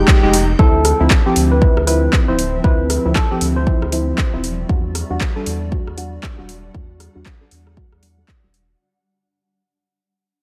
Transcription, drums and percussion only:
0, 0, Header, 1, 2, 480
1, 0, Start_track
1, 0, Tempo, 512821
1, 553, Time_signature, 4, 2, 24, 8
1, 9762, End_track
2, 0, Start_track
2, 0, Title_t, "Drums"
2, 72, Note_on_c, 9, 36, 103
2, 74, Note_on_c, 9, 39, 123
2, 166, Note_off_c, 9, 36, 0
2, 168, Note_off_c, 9, 39, 0
2, 313, Note_on_c, 9, 46, 100
2, 407, Note_off_c, 9, 46, 0
2, 553, Note_on_c, 9, 36, 113
2, 646, Note_off_c, 9, 36, 0
2, 793, Note_on_c, 9, 37, 71
2, 793, Note_on_c, 9, 46, 111
2, 887, Note_off_c, 9, 37, 0
2, 887, Note_off_c, 9, 46, 0
2, 1033, Note_on_c, 9, 36, 105
2, 1034, Note_on_c, 9, 39, 121
2, 1126, Note_off_c, 9, 36, 0
2, 1128, Note_off_c, 9, 39, 0
2, 1273, Note_on_c, 9, 46, 104
2, 1367, Note_off_c, 9, 46, 0
2, 1513, Note_on_c, 9, 36, 122
2, 1607, Note_off_c, 9, 36, 0
2, 1658, Note_on_c, 9, 37, 70
2, 1751, Note_off_c, 9, 37, 0
2, 1754, Note_on_c, 9, 46, 97
2, 1847, Note_off_c, 9, 46, 0
2, 1993, Note_on_c, 9, 36, 108
2, 1995, Note_on_c, 9, 39, 124
2, 2086, Note_off_c, 9, 36, 0
2, 2088, Note_off_c, 9, 39, 0
2, 2234, Note_on_c, 9, 46, 104
2, 2327, Note_off_c, 9, 46, 0
2, 2473, Note_on_c, 9, 36, 115
2, 2566, Note_off_c, 9, 36, 0
2, 2713, Note_on_c, 9, 37, 71
2, 2713, Note_on_c, 9, 46, 114
2, 2806, Note_off_c, 9, 37, 0
2, 2806, Note_off_c, 9, 46, 0
2, 2953, Note_on_c, 9, 36, 110
2, 2954, Note_on_c, 9, 39, 118
2, 3046, Note_off_c, 9, 36, 0
2, 3048, Note_off_c, 9, 39, 0
2, 3193, Note_on_c, 9, 46, 113
2, 3287, Note_off_c, 9, 46, 0
2, 3433, Note_on_c, 9, 36, 120
2, 3526, Note_off_c, 9, 36, 0
2, 3578, Note_on_c, 9, 37, 65
2, 3671, Note_off_c, 9, 37, 0
2, 3672, Note_on_c, 9, 46, 107
2, 3766, Note_off_c, 9, 46, 0
2, 3913, Note_on_c, 9, 36, 104
2, 3914, Note_on_c, 9, 39, 125
2, 4007, Note_off_c, 9, 36, 0
2, 4008, Note_off_c, 9, 39, 0
2, 4153, Note_on_c, 9, 46, 100
2, 4247, Note_off_c, 9, 46, 0
2, 4393, Note_on_c, 9, 36, 119
2, 4487, Note_off_c, 9, 36, 0
2, 4633, Note_on_c, 9, 37, 63
2, 4633, Note_on_c, 9, 46, 112
2, 4727, Note_off_c, 9, 37, 0
2, 4727, Note_off_c, 9, 46, 0
2, 4873, Note_on_c, 9, 36, 107
2, 4875, Note_on_c, 9, 39, 118
2, 4967, Note_off_c, 9, 36, 0
2, 4969, Note_off_c, 9, 39, 0
2, 5114, Note_on_c, 9, 46, 106
2, 5208, Note_off_c, 9, 46, 0
2, 5353, Note_on_c, 9, 36, 117
2, 5446, Note_off_c, 9, 36, 0
2, 5498, Note_on_c, 9, 37, 63
2, 5592, Note_off_c, 9, 37, 0
2, 5593, Note_on_c, 9, 46, 108
2, 5687, Note_off_c, 9, 46, 0
2, 5833, Note_on_c, 9, 36, 106
2, 5835, Note_on_c, 9, 39, 117
2, 5926, Note_off_c, 9, 36, 0
2, 5928, Note_off_c, 9, 39, 0
2, 6073, Note_on_c, 9, 46, 103
2, 6167, Note_off_c, 9, 46, 0
2, 6313, Note_on_c, 9, 36, 114
2, 6406, Note_off_c, 9, 36, 0
2, 6553, Note_on_c, 9, 37, 63
2, 6553, Note_on_c, 9, 46, 107
2, 6647, Note_off_c, 9, 37, 0
2, 6647, Note_off_c, 9, 46, 0
2, 6793, Note_on_c, 9, 36, 102
2, 6793, Note_on_c, 9, 39, 107
2, 6886, Note_off_c, 9, 36, 0
2, 6887, Note_off_c, 9, 39, 0
2, 7033, Note_on_c, 9, 46, 105
2, 7126, Note_off_c, 9, 46, 0
2, 7177, Note_on_c, 9, 37, 57
2, 7271, Note_off_c, 9, 37, 0
2, 7273, Note_on_c, 9, 36, 119
2, 7366, Note_off_c, 9, 36, 0
2, 7417, Note_on_c, 9, 37, 60
2, 7511, Note_off_c, 9, 37, 0
2, 7513, Note_on_c, 9, 46, 100
2, 7607, Note_off_c, 9, 46, 0
2, 7753, Note_on_c, 9, 36, 101
2, 7754, Note_on_c, 9, 39, 113
2, 7846, Note_off_c, 9, 36, 0
2, 7848, Note_off_c, 9, 39, 0
2, 7993, Note_on_c, 9, 46, 100
2, 8087, Note_off_c, 9, 46, 0
2, 9762, End_track
0, 0, End_of_file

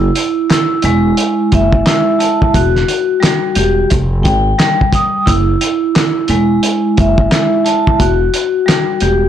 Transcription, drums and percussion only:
0, 0, Header, 1, 2, 480
1, 0, Start_track
1, 0, Tempo, 681818
1, 1791, Time_signature, 4, 2, 24, 8
1, 6539, End_track
2, 0, Start_track
2, 0, Title_t, "Drums"
2, 109, Note_on_c, 9, 42, 89
2, 179, Note_off_c, 9, 42, 0
2, 355, Note_on_c, 9, 39, 93
2, 356, Note_on_c, 9, 38, 115
2, 362, Note_on_c, 9, 42, 104
2, 426, Note_off_c, 9, 38, 0
2, 426, Note_off_c, 9, 39, 0
2, 432, Note_off_c, 9, 42, 0
2, 580, Note_on_c, 9, 42, 73
2, 650, Note_off_c, 9, 42, 0
2, 826, Note_on_c, 9, 42, 85
2, 896, Note_off_c, 9, 42, 0
2, 1069, Note_on_c, 9, 42, 74
2, 1074, Note_on_c, 9, 36, 92
2, 1140, Note_off_c, 9, 42, 0
2, 1144, Note_off_c, 9, 36, 0
2, 1214, Note_on_c, 9, 36, 99
2, 1285, Note_off_c, 9, 36, 0
2, 1313, Note_on_c, 9, 39, 96
2, 1314, Note_on_c, 9, 38, 118
2, 1315, Note_on_c, 9, 42, 97
2, 1384, Note_off_c, 9, 38, 0
2, 1384, Note_off_c, 9, 39, 0
2, 1385, Note_off_c, 9, 42, 0
2, 1551, Note_on_c, 9, 42, 80
2, 1621, Note_off_c, 9, 42, 0
2, 1703, Note_on_c, 9, 36, 96
2, 1773, Note_off_c, 9, 36, 0
2, 1791, Note_on_c, 9, 36, 110
2, 1791, Note_on_c, 9, 42, 112
2, 1861, Note_off_c, 9, 42, 0
2, 1862, Note_off_c, 9, 36, 0
2, 1942, Note_on_c, 9, 38, 34
2, 2012, Note_off_c, 9, 38, 0
2, 2031, Note_on_c, 9, 42, 85
2, 2101, Note_off_c, 9, 42, 0
2, 2277, Note_on_c, 9, 38, 116
2, 2277, Note_on_c, 9, 39, 95
2, 2283, Note_on_c, 9, 42, 104
2, 2347, Note_off_c, 9, 39, 0
2, 2348, Note_off_c, 9, 38, 0
2, 2354, Note_off_c, 9, 42, 0
2, 2502, Note_on_c, 9, 42, 76
2, 2572, Note_off_c, 9, 42, 0
2, 2748, Note_on_c, 9, 42, 86
2, 2758, Note_on_c, 9, 36, 95
2, 2818, Note_off_c, 9, 42, 0
2, 2828, Note_off_c, 9, 36, 0
2, 2992, Note_on_c, 9, 42, 72
2, 2995, Note_on_c, 9, 36, 94
2, 3062, Note_off_c, 9, 42, 0
2, 3066, Note_off_c, 9, 36, 0
2, 3235, Note_on_c, 9, 39, 97
2, 3236, Note_on_c, 9, 38, 118
2, 3237, Note_on_c, 9, 42, 95
2, 3306, Note_off_c, 9, 38, 0
2, 3306, Note_off_c, 9, 39, 0
2, 3307, Note_off_c, 9, 42, 0
2, 3388, Note_on_c, 9, 36, 82
2, 3458, Note_off_c, 9, 36, 0
2, 3468, Note_on_c, 9, 36, 91
2, 3472, Note_on_c, 9, 42, 82
2, 3538, Note_off_c, 9, 36, 0
2, 3543, Note_off_c, 9, 42, 0
2, 3711, Note_on_c, 9, 36, 108
2, 3711, Note_on_c, 9, 42, 113
2, 3782, Note_off_c, 9, 36, 0
2, 3782, Note_off_c, 9, 42, 0
2, 3950, Note_on_c, 9, 42, 87
2, 4020, Note_off_c, 9, 42, 0
2, 4196, Note_on_c, 9, 38, 114
2, 4196, Note_on_c, 9, 39, 92
2, 4202, Note_on_c, 9, 42, 102
2, 4266, Note_off_c, 9, 39, 0
2, 4267, Note_off_c, 9, 38, 0
2, 4273, Note_off_c, 9, 42, 0
2, 4421, Note_on_c, 9, 42, 70
2, 4491, Note_off_c, 9, 42, 0
2, 4667, Note_on_c, 9, 42, 84
2, 4737, Note_off_c, 9, 42, 0
2, 4910, Note_on_c, 9, 42, 73
2, 4914, Note_on_c, 9, 36, 99
2, 4980, Note_off_c, 9, 42, 0
2, 4984, Note_off_c, 9, 36, 0
2, 5054, Note_on_c, 9, 36, 96
2, 5125, Note_off_c, 9, 36, 0
2, 5152, Note_on_c, 9, 39, 95
2, 5153, Note_on_c, 9, 38, 120
2, 5154, Note_on_c, 9, 42, 95
2, 5223, Note_off_c, 9, 39, 0
2, 5224, Note_off_c, 9, 38, 0
2, 5224, Note_off_c, 9, 42, 0
2, 5391, Note_on_c, 9, 42, 82
2, 5461, Note_off_c, 9, 42, 0
2, 5542, Note_on_c, 9, 36, 97
2, 5613, Note_off_c, 9, 36, 0
2, 5630, Note_on_c, 9, 42, 113
2, 5631, Note_on_c, 9, 36, 110
2, 5701, Note_off_c, 9, 36, 0
2, 5701, Note_off_c, 9, 42, 0
2, 5869, Note_on_c, 9, 42, 87
2, 5939, Note_off_c, 9, 42, 0
2, 6116, Note_on_c, 9, 38, 119
2, 6116, Note_on_c, 9, 39, 93
2, 6122, Note_on_c, 9, 42, 103
2, 6186, Note_off_c, 9, 39, 0
2, 6187, Note_off_c, 9, 38, 0
2, 6193, Note_off_c, 9, 42, 0
2, 6339, Note_on_c, 9, 42, 70
2, 6410, Note_off_c, 9, 42, 0
2, 6539, End_track
0, 0, End_of_file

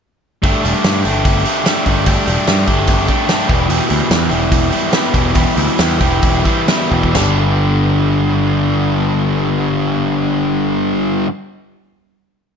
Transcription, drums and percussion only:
0, 0, Header, 1, 2, 480
1, 0, Start_track
1, 0, Key_signature, 1, "major"
1, 0, Tempo, 408441
1, 514, Time_signature, 4, 2, 24, 8
1, 5312, Tempo, 428266
1, 7232, Tempo, 462606
1, 8192, Tempo, 480000
1, 13598, End_track
2, 0, Start_track
2, 0, Title_t, "Drums"
2, 512, Note_on_c, 9, 36, 84
2, 518, Note_on_c, 9, 46, 54
2, 630, Note_off_c, 9, 36, 0
2, 635, Note_off_c, 9, 46, 0
2, 760, Note_on_c, 9, 46, 43
2, 878, Note_off_c, 9, 46, 0
2, 989, Note_on_c, 9, 46, 56
2, 994, Note_on_c, 9, 38, 91
2, 1106, Note_off_c, 9, 46, 0
2, 1111, Note_off_c, 9, 38, 0
2, 1233, Note_on_c, 9, 46, 46
2, 1351, Note_off_c, 9, 46, 0
2, 1471, Note_on_c, 9, 36, 93
2, 1471, Note_on_c, 9, 46, 58
2, 1588, Note_off_c, 9, 36, 0
2, 1589, Note_off_c, 9, 46, 0
2, 1709, Note_on_c, 9, 46, 42
2, 1827, Note_off_c, 9, 46, 0
2, 1948, Note_on_c, 9, 46, 57
2, 1952, Note_on_c, 9, 38, 91
2, 2065, Note_off_c, 9, 46, 0
2, 2070, Note_off_c, 9, 38, 0
2, 2183, Note_on_c, 9, 46, 44
2, 2189, Note_on_c, 9, 36, 65
2, 2300, Note_off_c, 9, 46, 0
2, 2306, Note_off_c, 9, 36, 0
2, 2422, Note_on_c, 9, 46, 56
2, 2428, Note_on_c, 9, 36, 81
2, 2540, Note_off_c, 9, 46, 0
2, 2546, Note_off_c, 9, 36, 0
2, 2671, Note_on_c, 9, 46, 43
2, 2788, Note_off_c, 9, 46, 0
2, 2906, Note_on_c, 9, 46, 55
2, 2911, Note_on_c, 9, 38, 91
2, 3024, Note_off_c, 9, 46, 0
2, 3028, Note_off_c, 9, 38, 0
2, 3141, Note_on_c, 9, 46, 42
2, 3146, Note_on_c, 9, 36, 66
2, 3259, Note_off_c, 9, 46, 0
2, 3264, Note_off_c, 9, 36, 0
2, 3376, Note_on_c, 9, 46, 53
2, 3384, Note_on_c, 9, 36, 89
2, 3493, Note_off_c, 9, 46, 0
2, 3502, Note_off_c, 9, 36, 0
2, 3622, Note_on_c, 9, 46, 40
2, 3625, Note_on_c, 9, 36, 68
2, 3740, Note_off_c, 9, 46, 0
2, 3743, Note_off_c, 9, 36, 0
2, 3863, Note_on_c, 9, 46, 54
2, 3868, Note_on_c, 9, 38, 86
2, 3981, Note_off_c, 9, 46, 0
2, 3985, Note_off_c, 9, 38, 0
2, 4107, Note_on_c, 9, 36, 91
2, 4112, Note_on_c, 9, 46, 39
2, 4225, Note_off_c, 9, 36, 0
2, 4229, Note_off_c, 9, 46, 0
2, 4345, Note_on_c, 9, 46, 54
2, 4463, Note_off_c, 9, 46, 0
2, 4583, Note_on_c, 9, 46, 42
2, 4701, Note_off_c, 9, 46, 0
2, 4826, Note_on_c, 9, 46, 57
2, 4831, Note_on_c, 9, 38, 89
2, 4944, Note_off_c, 9, 46, 0
2, 4949, Note_off_c, 9, 38, 0
2, 5067, Note_on_c, 9, 46, 43
2, 5185, Note_off_c, 9, 46, 0
2, 5310, Note_on_c, 9, 36, 92
2, 5310, Note_on_c, 9, 46, 59
2, 5422, Note_off_c, 9, 36, 0
2, 5422, Note_off_c, 9, 46, 0
2, 5542, Note_on_c, 9, 46, 46
2, 5654, Note_off_c, 9, 46, 0
2, 5766, Note_on_c, 9, 46, 55
2, 5771, Note_on_c, 9, 38, 88
2, 5878, Note_off_c, 9, 46, 0
2, 5883, Note_off_c, 9, 38, 0
2, 6007, Note_on_c, 9, 46, 45
2, 6008, Note_on_c, 9, 36, 68
2, 6119, Note_off_c, 9, 46, 0
2, 6120, Note_off_c, 9, 36, 0
2, 6240, Note_on_c, 9, 46, 55
2, 6249, Note_on_c, 9, 36, 91
2, 6352, Note_off_c, 9, 46, 0
2, 6361, Note_off_c, 9, 36, 0
2, 6490, Note_on_c, 9, 46, 45
2, 6602, Note_off_c, 9, 46, 0
2, 6731, Note_on_c, 9, 46, 54
2, 6735, Note_on_c, 9, 38, 96
2, 6843, Note_off_c, 9, 46, 0
2, 6848, Note_off_c, 9, 38, 0
2, 6975, Note_on_c, 9, 46, 44
2, 6980, Note_on_c, 9, 36, 71
2, 7087, Note_off_c, 9, 46, 0
2, 7092, Note_off_c, 9, 36, 0
2, 7222, Note_on_c, 9, 46, 56
2, 7228, Note_on_c, 9, 36, 88
2, 7327, Note_off_c, 9, 46, 0
2, 7332, Note_off_c, 9, 36, 0
2, 7459, Note_on_c, 9, 46, 43
2, 7462, Note_on_c, 9, 36, 66
2, 7563, Note_off_c, 9, 46, 0
2, 7565, Note_off_c, 9, 36, 0
2, 7695, Note_on_c, 9, 46, 52
2, 7699, Note_on_c, 9, 38, 86
2, 7799, Note_off_c, 9, 46, 0
2, 7803, Note_off_c, 9, 38, 0
2, 7941, Note_on_c, 9, 36, 45
2, 8045, Note_off_c, 9, 36, 0
2, 8063, Note_on_c, 9, 36, 67
2, 8167, Note_off_c, 9, 36, 0
2, 8182, Note_on_c, 9, 43, 78
2, 8182, Note_on_c, 9, 55, 66
2, 8186, Note_on_c, 9, 38, 79
2, 8282, Note_off_c, 9, 43, 0
2, 8282, Note_off_c, 9, 55, 0
2, 8286, Note_off_c, 9, 38, 0
2, 13598, End_track
0, 0, End_of_file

